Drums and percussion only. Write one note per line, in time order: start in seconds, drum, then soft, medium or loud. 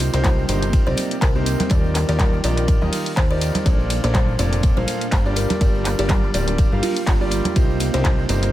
0.00 open hi-hat loud
0.00 ride medium
0.00 tambourine medium
0.14 snare medium
0.14 closed hi-hat medium
0.14 tambourine soft
0.24 kick loud
0.24 snare loud
0.24 clap loud
0.24 closed hi-hat medium
0.24 ride medium
0.24 tambourine medium
0.24 high conga medium
0.38 tambourine soft
0.49 open hi-hat loud
0.49 ride medium
0.49 tambourine loud
0.62 closed hi-hat medium
0.62 tambourine soft
0.73 kick loud
0.73 closed hi-hat medium
0.73 ride medium
0.73 tambourine medium
0.86 ride soft
0.86 tambourine soft
0.86 high conga medium
0.97 open hi-hat loud
0.97 ride medium
0.97 tambourine medium
1.11 closed hi-hat medium
1.11 tambourine soft
1.21 kick loud
1.21 snare loud
1.21 clap loud
1.21 closed hi-hat medium
1.21 ride medium
1.21 tambourine medium
1.35 tambourine soft
1.46 open hi-hat loud
1.46 ride medium
1.46 tambourine loud
1.60 snare medium
1.60 closed hi-hat medium
1.60 tambourine soft
1.60 high conga loud
1.70 kick loud
1.70 closed hi-hat medium
1.70 ride medium
1.70 tambourine medium
1.84 tambourine soft
1.95 clap medium
1.95 open hi-hat loud
1.95 ride medium
1.95 tambourine medium
2.09 snare medium
2.09 closed hi-hat soft
2.09 tambourine soft
2.19 kick loud
2.19 snare loud
2.19 clap loud
2.19 closed hi-hat medium
2.19 ride medium
2.19 tambourine medium
2.19 high conga medium
2.33 tambourine soft
2.44 open hi-hat loud
2.44 ride medium
2.44 tambourine medium
2.57 closed hi-hat medium
2.57 tambourine soft
2.68 kick loud
2.68 closed hi-hat medium
2.68 ride medium
2.68 tambourine medium
2.82 tambourine soft
2.82 high conga medium
2.93 open hi-hat loud
2.93 open hi-hat medium
2.93 tambourine medium
3.06 closed hi-hat medium
3.06 tambourine soft
3.16 kick loud
3.16 snare loud
3.16 clap loud
3.16 closed hi-hat medium
3.16 ride medium
3.16 tambourine medium
3.31 tambourine soft
3.41 open hi-hat loud
3.41 ride medium
3.41 tambourine loud
3.54 snare soft
3.54 closed hi-hat medium
3.54 tambourine soft
3.54 high conga medium
3.66 kick loud
3.66 closed hi-hat medium
3.66 ride medium
3.66 tambourine soft
3.80 tambourine soft
3.90 open hi-hat loud
3.90 ride medium
3.90 tambourine medium
4.04 snare medium
4.04 closed hi-hat soft
4.04 tambourine soft
4.14 kick loud
4.14 snare loud
4.14 clap loud
4.14 closed hi-hat medium
4.14 ride medium
4.14 tambourine medium
4.14 high conga medium
4.28 tambourine soft
4.39 open hi-hat loud
4.39 ride medium
4.39 tambourine medium
4.53 closed hi-hat soft
4.53 tambourine soft
4.63 kick loud
4.63 closed hi-hat medium
4.63 ride medium
4.63 tambourine medium
4.76 ride soft
4.76 tambourine soft
4.76 high conga medium
4.87 open hi-hat loud
4.87 ride medium
4.87 tambourine medium
5.01 closed hi-hat medium
5.01 tambourine soft
5.12 kick loud
5.12 snare loud
5.12 clap loud
5.12 closed hi-hat medium
5.12 ride medium
5.12 tambourine soft
5.26 tambourine soft
5.36 open hi-hat loud
5.36 ride medium
5.36 tambourine medium
5.50 snare medium
5.50 closed hi-hat medium
5.50 tambourine soft
5.50 high conga medium
5.61 kick loud
5.61 closed hi-hat medium
5.61 ride medium
5.61 tambourine medium
5.75 tambourine soft
5.85 clap medium
5.85 open hi-hat loud
5.85 ride medium
5.85 tambourine medium
5.99 snare medium
5.99 closed hi-hat medium
5.99 tambourine soft
6.09 kick loud
6.09 snare loud
6.09 clap loud
6.09 closed hi-hat medium
6.09 ride medium
6.09 tambourine medium
6.09 high conga medium
6.24 tambourine soft
6.34 open hi-hat loud
6.34 ride medium
6.34 tambourine medium
6.48 closed hi-hat medium
6.48 tambourine soft
6.58 kick loud
6.58 closed hi-hat medium
6.58 ride medium
6.58 tambourine soft
6.72 tambourine soft
6.72 high conga medium
6.83 open hi-hat loud
6.83 open hi-hat medium
6.83 tambourine medium
6.96 closed hi-hat medium
6.96 tambourine soft
7.07 kick loud
7.07 snare loud
7.07 clap loud
7.07 closed hi-hat medium
7.07 ride medium
7.07 tambourine medium
7.22 tambourine soft
7.31 open hi-hat loud
7.31 ride medium
7.31 tambourine medium
7.45 closed hi-hat medium
7.45 tambourine soft
7.45 high conga medium
7.56 kick loud
7.56 closed hi-hat medium
7.56 ride loud
7.56 tambourine medium
7.70 tambourine soft
7.80 open hi-hat loud
7.80 ride medium
7.80 tambourine medium
7.94 snare medium
7.94 closed hi-hat medium
7.94 tambourine soft
8.04 kick loud
8.04 snare loud
8.04 clap loud
8.04 closed hi-hat medium
8.04 ride medium
8.04 tambourine soft
8.04 high conga medium
8.18 tambourine soft
8.29 open hi-hat loud
8.29 ride medium
8.29 tambourine medium
8.43 closed hi-hat medium
8.43 tambourine soft